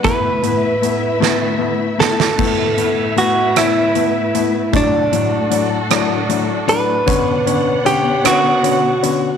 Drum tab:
CC |------------|x-----------|------------|------------|
HH |x-x-x-------|--x-x-x-x-x-|x-x-x-x-x-x-|x-x-x-x-x-x-|
SD |------o---oo|------r-----|------r-----|------r-----|
BD |o-----------|o-----------|o-----------|o-----------|